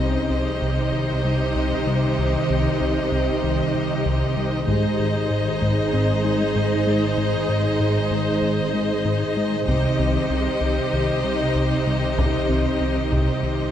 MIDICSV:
0, 0, Header, 1, 9, 480
1, 0, Start_track
1, 0, Key_signature, -3, "minor"
1, 0, Tempo, 625000
1, 1677, Time_signature, 4, 2, 24, 8
1, 10532, End_track
2, 0, Start_track
2, 0, Title_t, "Violin section"
2, 0, Program_c, 0, 48
2, 0, Note_on_c, 0, 72, 50
2, 0, Note_on_c, 0, 75, 49
2, 3565, Note_off_c, 0, 75, 0
2, 3588, Note_off_c, 0, 72, 0
2, 3597, Note_on_c, 0, 72, 56
2, 3597, Note_on_c, 0, 75, 55
2, 7406, Note_off_c, 0, 72, 0
2, 7406, Note_off_c, 0, 75, 0
2, 7425, Note_on_c, 0, 72, 52
2, 7426, Note_on_c, 0, 75, 53
2, 10532, Note_off_c, 0, 72, 0
2, 10532, Note_off_c, 0, 75, 0
2, 10532, End_track
3, 0, Start_track
3, 0, Title_t, "Ambient pad"
3, 0, Program_c, 1, 92
3, 0, Note_on_c, 1, 51, 50
3, 0, Note_on_c, 1, 63, 50
3, 0, Note_on_c, 1, 67, 57
3, 0, Note_on_c, 1, 72, 56
3, 3590, Note_off_c, 1, 63, 0
3, 3591, Note_off_c, 1, 51, 0
3, 3592, Note_off_c, 1, 72, 0
3, 3597, Note_off_c, 1, 67, 0
3, 3600, Note_on_c, 1, 51, 57
3, 3600, Note_on_c, 1, 63, 58
3, 3601, Note_on_c, 1, 68, 59
3, 3601, Note_on_c, 1, 72, 55
3, 7407, Note_off_c, 1, 63, 0
3, 7408, Note_off_c, 1, 51, 0
3, 7408, Note_off_c, 1, 72, 0
3, 7439, Note_off_c, 1, 68, 0
3, 7439, Note_on_c, 1, 67, 55
3, 7440, Note_on_c, 1, 72, 57
3, 7442, Note_on_c, 1, 51, 55
3, 7443, Note_on_c, 1, 63, 53
3, 10532, Note_off_c, 1, 51, 0
3, 10532, Note_off_c, 1, 63, 0
3, 10532, Note_off_c, 1, 67, 0
3, 10532, Note_off_c, 1, 72, 0
3, 10532, End_track
4, 0, Start_track
4, 0, Title_t, "Viola section"
4, 0, Program_c, 2, 48
4, 0, Note_on_c, 2, 63, 52
4, 0, Note_on_c, 2, 67, 47
4, 3565, Note_off_c, 2, 67, 0
4, 3586, Note_off_c, 2, 63, 0
4, 3595, Note_on_c, 2, 68, 61
4, 3596, Note_on_c, 2, 63, 64
4, 7406, Note_off_c, 2, 63, 0
4, 7434, Note_on_c, 2, 67, 57
4, 7436, Note_off_c, 2, 68, 0
4, 7437, Note_on_c, 2, 63, 55
4, 10532, Note_off_c, 2, 63, 0
4, 10532, Note_off_c, 2, 67, 0
4, 10532, End_track
5, 0, Start_track
5, 0, Title_t, "Synth pluck"
5, 0, Program_c, 3, 84
5, 0, Note_on_c, 3, 60, 50
5, 133, Note_off_c, 3, 60, 0
5, 227, Note_on_c, 3, 60, 52
5, 374, Note_off_c, 3, 60, 0
5, 475, Note_on_c, 3, 48, 77
5, 620, Note_off_c, 3, 48, 0
5, 714, Note_on_c, 3, 51, 56
5, 859, Note_off_c, 3, 51, 0
5, 955, Note_on_c, 3, 55, 49
5, 1100, Note_off_c, 3, 55, 0
5, 1191, Note_on_c, 3, 48, 74
5, 1337, Note_off_c, 3, 48, 0
5, 1434, Note_on_c, 3, 55, 53
5, 1579, Note_off_c, 3, 55, 0
5, 1676, Note_on_c, 3, 48, 75
5, 1820, Note_off_c, 3, 48, 0
5, 1915, Note_on_c, 3, 60, 46
5, 2060, Note_off_c, 3, 60, 0
5, 2152, Note_on_c, 3, 60, 53
5, 2298, Note_off_c, 3, 60, 0
5, 2390, Note_on_c, 3, 48, 77
5, 2536, Note_off_c, 3, 48, 0
5, 2633, Note_on_c, 3, 51, 58
5, 2778, Note_off_c, 3, 51, 0
5, 2877, Note_on_c, 3, 55, 56
5, 3021, Note_off_c, 3, 55, 0
5, 3117, Note_on_c, 3, 48, 74
5, 3261, Note_off_c, 3, 48, 0
5, 3358, Note_on_c, 3, 55, 52
5, 3501, Note_off_c, 3, 55, 0
5, 3593, Note_on_c, 3, 56, 78
5, 3738, Note_off_c, 3, 56, 0
5, 3835, Note_on_c, 3, 68, 51
5, 3979, Note_off_c, 3, 68, 0
5, 4077, Note_on_c, 3, 68, 50
5, 4221, Note_off_c, 3, 68, 0
5, 4312, Note_on_c, 3, 56, 73
5, 4458, Note_off_c, 3, 56, 0
5, 4554, Note_on_c, 3, 60, 55
5, 4699, Note_off_c, 3, 60, 0
5, 4795, Note_on_c, 3, 63, 56
5, 4939, Note_off_c, 3, 63, 0
5, 5035, Note_on_c, 3, 56, 81
5, 5180, Note_off_c, 3, 56, 0
5, 5278, Note_on_c, 3, 63, 53
5, 5421, Note_off_c, 3, 63, 0
5, 5517, Note_on_c, 3, 56, 75
5, 5661, Note_off_c, 3, 56, 0
5, 5753, Note_on_c, 3, 68, 50
5, 5898, Note_off_c, 3, 68, 0
5, 5996, Note_on_c, 3, 68, 48
5, 6141, Note_off_c, 3, 68, 0
5, 6237, Note_on_c, 3, 56, 84
5, 6381, Note_off_c, 3, 56, 0
5, 6480, Note_on_c, 3, 60, 55
5, 6623, Note_off_c, 3, 60, 0
5, 6719, Note_on_c, 3, 63, 59
5, 6863, Note_off_c, 3, 63, 0
5, 6956, Note_on_c, 3, 56, 76
5, 7100, Note_off_c, 3, 56, 0
5, 7195, Note_on_c, 3, 63, 51
5, 7340, Note_off_c, 3, 63, 0
5, 7437, Note_on_c, 3, 48, 76
5, 7581, Note_off_c, 3, 48, 0
5, 7674, Note_on_c, 3, 60, 54
5, 7819, Note_off_c, 3, 60, 0
5, 7915, Note_on_c, 3, 60, 49
5, 8059, Note_off_c, 3, 60, 0
5, 8152, Note_on_c, 3, 48, 77
5, 8298, Note_off_c, 3, 48, 0
5, 8391, Note_on_c, 3, 51, 56
5, 8537, Note_off_c, 3, 51, 0
5, 8634, Note_on_c, 3, 55, 53
5, 8779, Note_off_c, 3, 55, 0
5, 8870, Note_on_c, 3, 48, 66
5, 9016, Note_off_c, 3, 48, 0
5, 9114, Note_on_c, 3, 55, 49
5, 9259, Note_off_c, 3, 55, 0
5, 9351, Note_on_c, 3, 48, 68
5, 9497, Note_off_c, 3, 48, 0
5, 9590, Note_on_c, 3, 60, 52
5, 9736, Note_off_c, 3, 60, 0
5, 9836, Note_on_c, 3, 60, 47
5, 9980, Note_off_c, 3, 60, 0
5, 10073, Note_on_c, 3, 48, 72
5, 10218, Note_off_c, 3, 48, 0
5, 10313, Note_on_c, 3, 51, 53
5, 10458, Note_off_c, 3, 51, 0
5, 10532, End_track
6, 0, Start_track
6, 0, Title_t, "Cello section"
6, 0, Program_c, 4, 48
6, 0, Note_on_c, 4, 48, 53
6, 3592, Note_on_c, 4, 44, 59
6, 3594, Note_off_c, 4, 48, 0
6, 7434, Note_off_c, 4, 44, 0
6, 7437, Note_on_c, 4, 48, 56
6, 10532, Note_off_c, 4, 48, 0
6, 10532, End_track
7, 0, Start_track
7, 0, Title_t, "Analog synth bass"
7, 0, Program_c, 5, 38
7, 0, Note_on_c, 5, 36, 52
7, 140, Note_off_c, 5, 36, 0
7, 232, Note_on_c, 5, 36, 52
7, 377, Note_off_c, 5, 36, 0
7, 471, Note_on_c, 5, 36, 67
7, 617, Note_off_c, 5, 36, 0
7, 714, Note_on_c, 5, 36, 56
7, 859, Note_off_c, 5, 36, 0
7, 952, Note_on_c, 5, 48, 54
7, 1098, Note_off_c, 5, 48, 0
7, 1193, Note_on_c, 5, 36, 77
7, 1338, Note_off_c, 5, 36, 0
7, 1435, Note_on_c, 5, 48, 54
7, 1580, Note_off_c, 5, 48, 0
7, 1676, Note_on_c, 5, 36, 71
7, 1820, Note_off_c, 5, 36, 0
7, 1920, Note_on_c, 5, 36, 60
7, 2063, Note_off_c, 5, 36, 0
7, 2157, Note_on_c, 5, 36, 54
7, 2301, Note_off_c, 5, 36, 0
7, 2394, Note_on_c, 5, 36, 64
7, 2539, Note_off_c, 5, 36, 0
7, 2638, Note_on_c, 5, 36, 54
7, 2782, Note_off_c, 5, 36, 0
7, 2879, Note_on_c, 5, 48, 52
7, 3022, Note_off_c, 5, 48, 0
7, 3114, Note_on_c, 5, 36, 80
7, 3259, Note_off_c, 5, 36, 0
7, 3355, Note_on_c, 5, 48, 58
7, 3499, Note_off_c, 5, 48, 0
7, 3593, Note_on_c, 5, 44, 70
7, 3738, Note_off_c, 5, 44, 0
7, 3836, Note_on_c, 5, 44, 57
7, 3980, Note_off_c, 5, 44, 0
7, 4074, Note_on_c, 5, 44, 49
7, 4219, Note_off_c, 5, 44, 0
7, 4317, Note_on_c, 5, 44, 65
7, 4461, Note_off_c, 5, 44, 0
7, 4562, Note_on_c, 5, 44, 57
7, 4705, Note_off_c, 5, 44, 0
7, 4795, Note_on_c, 5, 56, 56
7, 4939, Note_off_c, 5, 56, 0
7, 5037, Note_on_c, 5, 44, 73
7, 5181, Note_off_c, 5, 44, 0
7, 5275, Note_on_c, 5, 56, 59
7, 5420, Note_off_c, 5, 56, 0
7, 5511, Note_on_c, 5, 44, 81
7, 5657, Note_off_c, 5, 44, 0
7, 5753, Note_on_c, 5, 44, 60
7, 5898, Note_off_c, 5, 44, 0
7, 5990, Note_on_c, 5, 44, 55
7, 6136, Note_off_c, 5, 44, 0
7, 6230, Note_on_c, 5, 44, 77
7, 6376, Note_off_c, 5, 44, 0
7, 6468, Note_on_c, 5, 44, 52
7, 6614, Note_off_c, 5, 44, 0
7, 6712, Note_on_c, 5, 56, 54
7, 6857, Note_off_c, 5, 56, 0
7, 6952, Note_on_c, 5, 44, 77
7, 7097, Note_off_c, 5, 44, 0
7, 7195, Note_on_c, 5, 56, 55
7, 7340, Note_off_c, 5, 56, 0
7, 7432, Note_on_c, 5, 36, 71
7, 7577, Note_off_c, 5, 36, 0
7, 7675, Note_on_c, 5, 36, 63
7, 7819, Note_off_c, 5, 36, 0
7, 7911, Note_on_c, 5, 36, 52
7, 8057, Note_off_c, 5, 36, 0
7, 8148, Note_on_c, 5, 36, 64
7, 8295, Note_off_c, 5, 36, 0
7, 8396, Note_on_c, 5, 36, 51
7, 8540, Note_off_c, 5, 36, 0
7, 8633, Note_on_c, 5, 48, 56
7, 8778, Note_off_c, 5, 48, 0
7, 8871, Note_on_c, 5, 36, 71
7, 9017, Note_off_c, 5, 36, 0
7, 9111, Note_on_c, 5, 48, 54
7, 9257, Note_off_c, 5, 48, 0
7, 9350, Note_on_c, 5, 36, 69
7, 9496, Note_off_c, 5, 36, 0
7, 9595, Note_on_c, 5, 36, 53
7, 9740, Note_off_c, 5, 36, 0
7, 9836, Note_on_c, 5, 36, 48
7, 9980, Note_off_c, 5, 36, 0
7, 10077, Note_on_c, 5, 36, 66
7, 10221, Note_off_c, 5, 36, 0
7, 10314, Note_on_c, 5, 36, 50
7, 10459, Note_off_c, 5, 36, 0
7, 10532, End_track
8, 0, Start_track
8, 0, Title_t, "Double bass section"
8, 0, Program_c, 6, 48
8, 0, Note_on_c, 6, 36, 52
8, 3590, Note_on_c, 6, 32, 59
8, 3594, Note_off_c, 6, 36, 0
8, 7433, Note_on_c, 6, 36, 51
8, 7434, Note_off_c, 6, 32, 0
8, 10532, Note_off_c, 6, 36, 0
8, 10532, End_track
9, 0, Start_track
9, 0, Title_t, "Taiko and cinematic ensemble drums"
9, 3595, Note_on_c, 9, 41, 54
9, 3672, Note_off_c, 9, 41, 0
9, 4318, Note_on_c, 9, 41, 39
9, 4395, Note_off_c, 9, 41, 0
9, 7437, Note_on_c, 9, 41, 56
9, 7514, Note_off_c, 9, 41, 0
9, 9358, Note_on_c, 9, 41, 82
9, 9434, Note_off_c, 9, 41, 0
9, 10079, Note_on_c, 9, 41, 67
9, 10156, Note_off_c, 9, 41, 0
9, 10532, End_track
0, 0, End_of_file